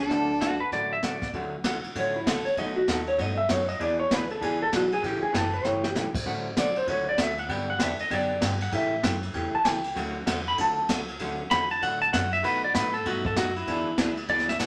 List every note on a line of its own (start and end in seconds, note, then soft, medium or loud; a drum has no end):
0.00 0.57 D4 medium
0.00 0.57 A4 medium
0.10 0.60 D2 medium
0.10 0.31 D3 medium
0.10 0.31 F#3 medium
0.10 0.31 A3 medium
0.10 0.31 C#4 medium
0.10 0.31 F#4 medium
0.10 brush sweep soft
0.10 kick soft
0.10 snare soft
0.40 0.52 D3 medium
0.40 0.52 F#3 medium
0.40 0.53 A3 medium
0.40 0.53 C#4 medium
0.40 0.53 F#4 medium
0.40 0.61 F#4 medium
0.40 kick soft
0.40 snare medium
0.40 hi-hat pedal medium
0.60 0.72 B4 medium
0.72 1.21 A1 medium
0.72 0.93 D3 soft
0.72 0.93 F#3 medium
0.72 0.93 A3 medium
0.72 0.94 C#4 medium
0.72 0.94 F#4 medium
0.72 0.91 D5 medium
0.72 brush sweep soft
0.72 kick soft
0.72 snare soft
0.93 1.04 E5 medium
1.03 1.15 D3 medium
1.03 1.15 F#3 medium
1.03 1.15 A3 medium
1.03 1.15 C#4 medium
1.03 1.15 F#4 medium
1.03 1.28 D5 medium
1.03 kick soft
1.03 snare medium
1.03 hi-hat pedal soft
1.22 kick medium
1.22 snare soft
1.33 1.64 D2 medium
1.33 1.55 D3 medium
1.33 1.55 F#3 medium
1.33 1.55 A3 medium
1.33 1.55 C#4 medium
1.33 1.55 F#4 medium
1.33 kick soft
1.33 ride soft
1.64 1.83 B1 medium
1.64 1.76 D3 medium
1.64 1.76 F#3 medium
1.64 1.76 A3 medium
1.64 1.76 C#4 medium
1.64 1.77 F#4 medium
1.64 kick soft
1.64 snare medium
1.64 hi-hat pedal medium
1.64 ride medium
1.84 muted upright bass stroke soft
1.84 ride soft
1.95 2.26 A1 medium
1.95 2.16 D3 medium
1.95 2.16 F#3 medium
1.95 2.16 A3 medium
1.95 2.16 C#4 medium
1.95 2.17 F#4 medium
1.95 2.16 C#5 medium
1.95 kick soft
1.95 ride medium
2.16 2.27 E4 soft
2.26 2.44 C#2 medium
2.26 2.38 D3 medium
2.26 2.38 F#3 medium
2.26 2.38 A3 medium
2.26 2.38 C#4 medium
2.26 2.38 F#4 medium
2.26 2.46 A4 medium
2.26 kick soft
2.26 snare medium
2.26 hi-hat pedal medium
2.26 ride medium
2.45 2.57 C#5 medium
2.45 muted upright bass stroke soft
2.45 ride soft
2.57 2.87 B1 medium
2.57 2.78 B2 medium
2.57 2.78 F#3 medium
2.57 2.78 A3 medium
2.57 2.78 D#4 medium
2.57 2.79 F#4 medium
2.57 2.77 D#5 medium
2.57 kick soft
2.57 ride medium
2.76 2.88 F#4 medium
2.87 3.18 D#2 medium
2.87 2.99 B2 medium
2.87 2.99 F#3 medium
2.87 3.00 A3 medium
2.87 3.00 D#4 medium
2.87 3.00 F#4 medium
2.87 3.07 A4 medium
2.87 kick soft
2.87 snare medium
2.87 hi-hat pedal medium
2.87 ride medium
3.07 3.19 C#5 medium
3.07 ride soft
3.18 3.48 G2 medium
3.18 3.39 B2 medium
3.18 3.39 F#3 medium
3.18 3.39 A3 medium
3.18 3.39 D#4 medium
3.18 3.40 F#4 medium
3.18 3.37 D#5 medium
3.18 kick soft
3.18 ride medium
3.38 3.49 E5 loud
3.49 3.79 F#2 loud
3.49 3.60 B2 medium
3.49 3.61 F#3 medium
3.49 3.61 A3 medium
3.49 3.61 D#4 medium
3.49 3.61 F#4 medium
3.49 3.68 C#5 medium
3.49 kick soft
3.49 snare medium
3.49 hi-hat pedal medium
3.49 ride medium
3.68 3.80 D#5 loud
3.68 ride medium
3.79 4.10 E2 medium
3.79 4.00 E3 medium
3.79 4.01 B3 medium
3.79 4.01 D4 medium
3.79 4.01 G#4 medium
3.79 3.99 D5 medium
3.79 kick soft
3.79 ride medium
4.00 4.11 C#5 medium
4.10 4.41 D2 medium
4.10 4.22 E3 medium
4.10 4.23 B3 medium
4.10 4.23 D4 medium
4.10 4.23 G#4 medium
4.10 4.31 B4 medium
4.10 kick soft
4.10 snare medium
4.10 hi-hat pedal medium
4.10 ride medium
4.30 4.42 A4 medium
4.30 ride soft
4.41 4.72 C#2 medium
4.41 4.62 E3 medium
4.41 4.62 B3 medium
4.41 4.62 D4 medium
4.41 4.62 G#4 medium
4.41 4.61 G#4 medium
4.41 kick soft
4.41 ride medium
4.62 4.73 A4 medium
4.72 5.02 B1 loud
4.72 4.84 E3 medium
4.72 4.84 B3 medium
4.72 4.84 D4 medium
4.72 4.93 F#4 medium
4.72 4.84 G#4 medium
4.72 kick soft
4.72 snare medium
4.72 hi-hat pedal medium
4.72 ride medium
4.92 5.04 G#4 loud
4.92 ride soft
5.02 5.21 A1 medium
5.02 5.23 C#3 medium
5.02 5.24 E3 medium
5.02 5.24 A3 medium
5.02 5.24 C#4 medium
5.02 5.24 G4 medium
5.02 5.22 G4 medium
5.02 kick soft
5.02 ride medium
5.22 5.34 G#4 medium
5.22 muted upright bass stroke soft
5.33 5.64 F#1 loud
5.33 5.45 C#3 medium
5.33 5.45 E3 medium
5.33 5.45 A3 medium
5.33 5.45 C#4 medium
5.33 5.45 G4 medium
5.33 kick soft
5.33 snare medium
5.33 hi-hat pedal medium
5.33 ride medium
5.37 5.54 A4 medium
5.53 5.65 B4 medium
5.53 ride soft
5.64 5.94 G1 medium
5.64 5.85 C#3 medium
5.64 5.85 E3 medium
5.64 5.85 A3 medium
5.64 5.86 C#4 medium
5.64 5.86 G4 medium
5.64 5.84 C#5 medium
5.64 snare medium
5.84 5.91 G4 medium
5.84 snare medium
5.95 6.13 B1 medium
5.95 6.07 C#3 medium
5.95 6.07 E3 medium
5.95 6.07 A3 medium
5.95 6.07 C#4 medium
5.95 6.07 G4 medium
5.95 snare medium
5.95 hi-hat pedal medium
6.14 muted upright bass stroke soft
6.14 kick medium
6.14 crash medium
6.26 6.56 A1 medium
6.26 6.47 D3 medium
6.26 6.47 F#3 medium
6.26 6.47 A3 medium
6.26 6.47 C#4 medium
6.26 6.47 F#4 medium
6.26 kick soft
6.57 6.87 B1 medium
6.57 6.68 D3 medium
6.57 6.69 F#3 medium
6.57 6.68 A3 medium
6.57 6.69 C#4 medium
6.57 6.69 F#4 medium
6.57 6.77 D5 medium
6.57 kick soft
6.57 snare medium
6.57 hi-hat pedal medium
6.57 ride medium
6.76 6.88 C5 medium
6.76 ride soft
6.87 7.17 C#2 medium
6.87 7.09 D3 medium
6.87 7.09 F#3 medium
6.87 7.09 A3 medium
6.87 7.09 C#4 medium
6.87 7.09 F#4 medium
6.87 7.08 C#5 medium
6.87 kick soft
6.87 ride medium
7.09 7.19 D5 medium
7.18 7.48 D2 medium
7.18 7.30 D3 medium
7.18 7.30 F#3 medium
7.18 7.30 A3 medium
7.18 7.30 C#4 medium
7.18 7.30 F#4 medium
7.18 kick soft
7.18 snare medium
7.18 hi-hat pedal medium
7.18 ride medium
7.22 7.39 E5 medium
7.38 7.52 F#5 medium
7.38 ride medium
7.49 7.79 G2 medium
7.49 7.70 D3 medium
7.49 7.70 F#3 medium
7.49 7.70 B3 medium
7.49 7.70 D4 medium
7.49 7.70 G4 medium
7.49 7.69 G5 loud
7.49 kick soft
7.49 ride medium
7.70 7.81 F#5 medium
7.78 7.98 E2 medium
7.78 7.91 D3 medium
7.78 7.91 F#3 medium
7.78 7.91 B3 medium
7.78 7.92 D4 loud
7.78 7.91 G4 medium
7.78 kick soft
7.78 snare medium
7.78 hi-hat pedal medium
7.78 ride medium
7.83 8.00 E5 medium
7.99 8.12 D#5 loud
7.99 muted upright bass stroke soft
7.99 ride medium
8.10 8.41 F#2 medium
8.10 8.31 D3 medium
8.10 8.31 F#3 medium
8.10 8.31 B3 medium
8.10 8.32 D4 medium
8.10 8.32 G4 medium
8.10 8.41 D5 medium
8.10 kick soft
8.10 ride medium
8.41 8.71 G2 medium
8.41 8.53 D3 medium
8.41 8.53 F#3 medium
8.41 8.53 B3 medium
8.41 8.53 D4 medium
8.41 8.53 G4 medium
8.41 kick soft
8.41 snare medium
8.41 hi-hat pedal medium
8.41 ride medium
8.61 8.73 F#5 medium
8.61 ride medium
8.72 9.03 A2 loud
8.72 8.93 C#3 medium
8.72 8.93 E3 medium
8.72 8.93 A3 medium
8.72 8.93 C#4 medium
8.72 8.93 G4 medium
8.72 9.03 E5 medium
8.72 kick soft
8.72 ride medium
9.03 9.34 F#2 loud
9.03 9.15 C#3 medium
9.03 9.15 E3 medium
9.03 9.15 A3 medium
9.03 9.15 C#4 medium
9.03 9.15 G4 medium
9.03 kick soft
9.03 snare medium
9.03 hi-hat pedal medium
9.03 ride medium
9.23 ride medium
9.34 9.52 E2 medium
9.34 9.55 C#3 medium
9.34 9.55 E3 medium
9.34 9.55 A3 medium
9.34 9.55 C#4 medium
9.34 9.55 G4 medium
9.34 kick soft
9.34 ride medium
9.54 9.68 A5 loud
9.54 muted upright bass stroke soft
9.65 9.95 C#2 medium
9.65 9.77 C#3 medium
9.65 9.77 E3 medium
9.65 9.77 A3 medium
9.65 9.77 C#4 medium
9.65 9.77 G4 medium
9.65 9.98 G5 medium
9.65 kick soft
9.65 snare medium
9.65 hi-hat pedal medium
9.65 ride medium
9.84 ride medium
9.95 10.26 D2 medium
9.95 10.17 D3 medium
9.95 10.17 F#3 medium
9.95 10.17 A3 medium
9.95 10.17 C#4 medium
9.95 10.17 F#4 medium
9.95 kick soft
9.95 ride medium
10.26 10.57 E2 medium
10.26 10.38 D3 medium
10.26 10.38 F#3 medium
10.26 10.38 A3 medium
10.26 10.38 C#4 medium
10.26 10.39 F#4 medium
10.26 kick soft
10.26 snare medium
10.26 hi-hat pedal medium
10.26 ride medium
10.47 10.59 B5 loud
10.47 ride soft
10.57 10.88 D2 medium
10.57 10.78 D3 medium
10.57 10.79 F#3 medium
10.57 10.79 A3 medium
10.57 10.79 C#4 medium
10.57 10.79 F#4 medium
10.57 10.89 A5 medium
10.57 kick soft
10.57 ride medium
10.89 11.19 C#2 medium
10.89 11.00 D3 medium
10.89 11.00 F#3 medium
10.89 11.01 A3 medium
10.89 11.01 C#4 medium
10.89 11.01 F#4 medium
10.89 kick soft
10.89 snare medium
10.89 hi-hat pedal medium
10.89 ride medium
11.08 ride medium
11.19 11.50 D2 medium
11.19 11.41 D3 medium
11.19 11.41 F#3 medium
11.19 11.41 A3 medium
11.19 11.41 C#4 medium
11.19 11.41 F#4 medium
11.19 kick soft
11.19 ride medium
11.51 11.81 E2 medium
11.51 11.62 D3 medium
11.51 11.63 F#3 medium
11.51 11.63 A3 medium
11.51 11.63 C#4 medium
11.51 11.63 F#4 medium
11.51 11.70 B5 medium
11.51 kick soft
11.51 snare medium
11.51 hi-hat pedal medium
11.51 ride medium
11.70 11.82 A5 medium
11.70 ride soft
11.82 12.12 A2 medium
11.82 12.03 D3 soft
11.82 12.03 F#3 medium
11.82 12.03 A3 medium
11.82 12.03 C#4 medium
11.82 12.03 F#4 medium
11.82 12.01 F#5 medium
11.82 kick soft
11.82 ride medium
12.02 12.13 A5 medium
12.13 12.43 F#2 medium
12.13 12.24 D3 medium
12.13 12.24 F#3 medium
12.13 12.24 A3 medium
12.13 12.24 C#4 medium
12.13 12.24 F#4 medium
12.13 12.32 F#5 loud
12.13 kick soft
12.13 snare medium
12.13 hi-hat pedal medium
12.13 ride medium
12.32 12.44 E5 medium
12.32 ride medium
12.43 12.64 B2 medium
12.43 12.74 B2 medium
12.43 12.64 F#3 medium
12.43 12.64 A3 medium
12.43 12.64 D#4 medium
12.43 12.64 F#4 medium
12.43 12.63 B4 medium
12.43 kick soft
12.43 ride medium
12.64 12.75 D5 medium
12.74 13.05 A2 medium
12.74 12.86 B2 medium
12.74 12.86 F#3 medium
12.74 12.86 A3 medium
12.74 12.86 D#4 medium
12.74 12.86 F#4 medium
12.74 12.94 B4 medium
12.74 kick soft
12.74 snare medium
12.74 hi-hat pedal medium
12.74 ride medium
12.94 13.05 A4 medium
12.94 ride soft
13.05 13.36 G2 medium
13.05 13.26 B2 medium
13.05 13.26 F#3 medium
13.05 13.26 A3 medium
13.05 13.26 D#4 medium
13.05 13.26 F#4 medium
13.05 13.25 F#4 medium
13.05 kick soft
13.05 ride medium
13.25 13.37 A4 medium
13.25 kick medium
13.36 13.66 F#2 medium
13.36 13.48 B2 medium
13.36 13.48 F#3 medium
13.36 13.48 A3 medium
13.36 13.48 D#4 medium
13.36 13.48 F#4 medium
13.36 13.56 F#4 medium
13.36 kick soft
13.36 snare medium
13.36 hi-hat pedal medium
13.36 ride medium
13.56 14.16 E4 loud
13.56 ride soft
13.67 13.85 E2 medium
13.67 13.88 E3 medium
13.67 13.88 B3 medium
13.67 13.88 D4 medium
13.67 13.88 G#4 medium
13.67 kick soft
13.67 ride medium
13.88 muted upright bass stroke soft
13.98 14.28 D2 loud
13.98 14.10 E3 medium
13.98 14.10 B3 medium
13.98 14.10 D4 medium
13.98 14.10 G#4 medium
13.98 kick soft
13.98 snare medium
13.98 hi-hat pedal medium
13.98 ride medium
14.17 ride soft
14.28 14.59 C#2 medium
14.28 14.50 E3 soft
14.28 14.50 B3 medium
14.28 14.50 D4 medium
14.28 14.50 G#4 medium
14.28 14.48 D5 loud
14.28 kick soft
14.28 ride medium
14.39 snare soft
14.49 14.60 E5 medium
14.49 snare medium
14.59 14.66 B1 medium
14.59 14.66 E3 medium
14.59 14.66 B3 medium
14.59 14.66 D4 medium
14.59 14.66 G#4 medium
14.59 14.66 F#5 loud
14.59 kick soft
14.59 snare medium
14.59 hi-hat pedal medium
14.59 ride medium